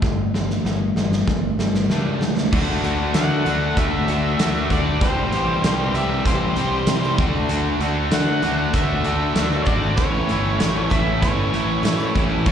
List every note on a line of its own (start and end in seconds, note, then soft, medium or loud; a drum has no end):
0.02 0.57 G1 medium
0.02 0.30 G3 medium
0.02 0.30 A3 medium
0.02 kick loud
0.02 snare medium
0.34 0.62 G3 medium
0.34 0.62 A3 medium
0.34 snare medium
0.50 snare medium
0.64 0.92 G1 medium
0.64 0.93 G3 medium
0.64 0.94 A3 medium
0.64 snare medium
0.95 1.23 G1 medium
0.95 1.25 G3 medium
0.95 1.25 A3 medium
0.95 snare medium
1.12 snare medium
1.27 1.55 G1 medium
1.27 1.56 G3 medium
1.27 1.56 A3 medium
1.27 kick medium
1.27 snare medium
1.58 1.86 G1 medium
1.58 1.87 G3 medium
1.58 1.88 A3 medium
1.58 snare medium
1.75 snare medium
1.88 2.44 C#2 medium
1.88 2.19 G3 medium
1.88 2.20 A3 loud
1.88 2.20 D4 loud
1.88 snare medium
2.21 2.50 G3 medium
2.21 2.50 A3 medium
2.21 snare medium
2.37 snare medium
2.52 2.81 D2 loud
2.52 2.82 D3 medium
2.52 2.83 A3 loud
2.52 2.83 D4 loud
2.52 2.84 F#4 loud
2.52 kick loud
2.52 crash loud
2.68 tambourine soft
2.82 3.12 D2 medium
2.82 3.13 D3 medium
2.82 3.14 A3 medium
2.82 3.14 D4 loud
2.82 3.15 F#4 medium
2.82 closed hi-hat medium
2.82 tambourine medium
3.14 3.43 D3 medium
3.14 3.44 D3 medium
3.14 3.44 A3 medium
3.14 3.45 D4 medium
3.14 3.45 F#4 medium
3.14 3.78 F#5 loud
3.14 snare loud
3.14 closed hi-hat medium
3.14 tambourine loud
3.45 3.75 D2 medium
3.45 3.76 D3 loud
3.45 3.77 A3 loud
3.45 3.77 D4 loud
3.45 3.77 F#4 loud
3.45 closed hi-hat medium
3.45 tambourine medium
3.61 tambourine soft
3.77 4.06 D2 loud
3.77 4.07 D3 medium
3.77 4.08 A3 medium
3.77 4.08 D4 medium
3.77 4.09 F#4 medium
3.77 4.67 E5 loud
3.77 kick medium
3.77 closed hi-hat loud
4.08 4.37 D2 medium
4.08 4.38 D3 loud
4.08 4.39 A3 loud
4.08 4.40 D4 loud
4.08 4.40 F#4 loud
4.08 closed hi-hat medium
4.08 tambourine medium
4.25 tambourine soft
4.39 4.68 D2 medium
4.39 4.70 D3 medium
4.39 4.71 A3 medium
4.39 4.71 D4 medium
4.39 4.72 F#4 medium
4.39 snare loud
4.39 closed hi-hat loud
4.39 tambourine loud
4.55 tambourine medium
4.70 5.01 D2 medium
4.70 5.00 D3 medium
4.70 5.00 A3 medium
4.70 5.00 D4 loud
4.70 5.01 F#4 loud
4.70 5.02 D5 medium
4.70 kick medium
4.70 closed hi-hat medium
4.70 tambourine soft
4.86 tambourine soft
5.01 5.30 C2 loud
5.01 5.32 C3 loud
5.01 5.33 E3 medium
5.01 5.33 G3 loud
5.01 5.34 C4 loud
5.01 5.34 G4 loud
5.01 5.91 C5 loud
5.01 kick loud
5.01 closed hi-hat medium
5.17 tambourine soft
5.32 5.61 A1 medium
5.32 5.63 C3 medium
5.32 5.64 E3 medium
5.32 5.64 G3 loud
5.32 5.65 C4 medium
5.32 5.65 G4 loud
5.32 closed hi-hat medium
5.32 tambourine medium
5.64 5.92 C2 loud
5.64 5.94 C3 medium
5.64 5.95 E3 medium
5.64 5.95 G3 medium
5.64 5.96 C4 medium
5.64 5.96 G4 loud
5.64 snare loud
5.64 closed hi-hat loud
5.64 tambourine loud
5.64 tambourine medium
5.93 6.22 C2 medium
5.93 6.25 C3 loud
5.93 6.26 E3 loud
5.93 6.26 G3 loud
5.93 6.24 E5 medium
5.93 closed hi-hat medium
5.93 tambourine medium
5.97 6.27 C4 loud
5.97 6.27 G4 loud
6.10 tambourine soft
6.25 6.54 A1 medium
6.25 6.56 C3 medium
6.25 6.57 E3 medium
6.25 6.57 G3 loud
6.25 6.58 C4 medium
6.25 6.58 G4 loud
6.25 7.15 C5 medium
6.25 kick medium
6.25 closed hi-hat loud
6.56 6.85 C2 medium
6.56 6.87 C3 medium
6.56 6.88 E3 loud
6.56 6.89 G3 loud
6.56 6.89 C4 loud
6.56 6.89 G4 loud
6.56 closed hi-hat medium
6.56 tambourine medium
6.73 tambourine soft
6.87 7.16 C3 medium
6.87 7.17 C3 medium
6.87 7.17 E3 loud
6.87 7.18 G3 medium
6.87 7.18 C4 loud
6.87 7.18 G4 loud
6.87 snare loud
6.87 closed hi-hat loud
6.87 tambourine loud
6.87 tambourine medium
7.04 tambourine medium
7.18 7.47 D2 medium
7.18 7.48 D3 loud
7.18 7.50 A3 loud
7.18 7.50 D4 loud
7.18 7.50 F#4 loud
7.18 kick loud
7.18 closed hi-hat medium
7.35 tambourine soft
7.49 7.78 D2 loud
7.49 7.80 D3 medium
7.49 7.82 A3 loud
7.49 7.81 D4 loud
7.49 7.82 F#4 loud
7.49 closed hi-hat loud
7.67 tambourine soft
7.79 8.09 D2 medium
7.79 8.10 D3 medium
7.79 8.12 A3 medium
7.79 8.11 D4 loud
7.79 8.12 F#4 medium
7.79 closed hi-hat medium
7.79 tambourine medium
8.11 8.40 D3 medium
8.11 8.41 D3 medium
8.11 8.43 A3 medium
8.11 8.43 D4 medium
8.11 8.43 F#4 medium
8.11 8.75 F#5 loud
8.11 snare loud
8.11 closed hi-hat loud
8.11 tambourine loud
8.11 tambourine medium
8.42 8.71 D2 medium
8.42 8.73 D3 loud
8.42 8.74 A3 loud
8.42 8.74 D4 loud
8.42 8.74 F#4 loud
8.42 closed hi-hat medium
8.42 tambourine medium
8.58 tambourine soft
8.73 9.02 D2 loud
8.73 9.04 D3 medium
8.73 9.05 A3 medium
8.73 9.05 D4 medium
8.73 9.06 F#4 loud
8.73 9.63 E5 medium
8.73 kick medium
8.73 closed hi-hat loud
9.04 9.34 D2 medium
9.04 9.35 D3 loud
9.04 9.36 A3 loud
9.04 9.36 D4 loud
9.04 9.36 F#4 loud
9.04 closed hi-hat medium
9.04 tambourine medium
9.21 tambourine soft
9.35 9.64 D2 medium
9.35 9.65 D3 medium
9.35 9.67 A3 loud
9.35 9.67 D4 medium
9.35 9.67 F#4 loud
9.35 snare loud
9.35 closed hi-hat loud
9.35 tambourine loud
9.35 tambourine medium
9.52 tambourine medium
9.62 9.95 G#1 medium
9.62 9.67 C#5 medium
9.62 closed hi-hat medium
9.66 9.96 D3 medium
9.66 9.99 A3 medium
9.66 9.96 D4 loud
9.66 9.96 F#4 medium
9.66 9.96 D5 loud
9.66 kick medium
9.66 tambourine soft
9.83 tambourine soft
9.97 10.26 A1 medium
9.97 10.28 A2 loud
9.97 10.29 E3 loud
9.97 10.30 A3 loud
9.97 10.30 C#4 loud
9.97 10.30 E4 loud
9.97 10.91 C#5 medium
9.97 kick loud
9.97 closed hi-hat loud
10.14 tambourine soft
10.29 10.58 G1 medium
10.29 10.58 A2 medium
10.29 10.59 E3 medium
10.29 10.61 A3 medium
10.29 10.60 C#4 medium
10.29 10.61 E4 medium
10.29 closed hi-hat medium
10.29 tambourine medium
10.45 tambourine soft
10.60 10.89 A1 medium
10.60 10.90 A2 medium
10.60 10.90 E3 medium
10.60 10.92 A3 medium
10.60 10.92 C#4 medium
10.60 10.92 E4 loud
10.60 snare loud
10.60 closed hi-hat loud
10.60 tambourine medium
10.60 tambourine loud
10.90 11.20 A1 medium
10.90 11.22 A2 loud
10.90 11.22 E3 loud
10.90 11.22 A3 loud
10.90 11.23 C#4 loud
10.90 11.23 E4 loud
10.90 11.21 E5 medium
10.90 kick medium
10.90 closed hi-hat medium
10.90 tambourine medium
11.07 tambourine soft
11.22 11.51 G1 loud
11.22 11.52 A2 medium
11.22 11.53 E3 medium
11.22 11.53 A3 loud
11.22 11.54 C#4 loud
11.22 11.54 E4 loud
11.22 12.11 C#5 medium
11.22 kick loud
11.22 closed hi-hat loud
11.22 tambourine soft
11.52 11.81 A1 medium
11.52 11.83 A2 medium
11.52 11.84 E3 loud
11.52 11.84 A3 loud
11.52 11.85 C#4 loud
11.52 11.85 E4 loud
11.52 closed hi-hat medium
11.83 12.12 A2 medium
11.83 12.15 A2 loud
11.83 closed hi-hat loud
11.83 tambourine medium
11.85 12.15 E3 medium
11.85 12.16 A3 loud
11.85 12.16 C#4 medium
11.85 12.17 E4 loud
11.85 snare loud
11.85 tambourine loud
12.00 tambourine medium
12.15 12.44 A1 medium
12.15 12.44 A2 medium
12.15 12.45 E3 medium
12.15 12.45 A3 medium
12.15 12.45 C#4 medium
12.15 12.46 E4 loud
12.15 kick medium
12.15 closed hi-hat medium
12.30 tambourine soft
12.46 12.52 D2 medium
12.46 12.52 D3 loud
12.46 12.52 A3 loud
12.46 12.52 D4 loud
12.46 12.52 F#4 loud
12.46 12.52 D5 medium
12.46 kick loud
12.46 crash loud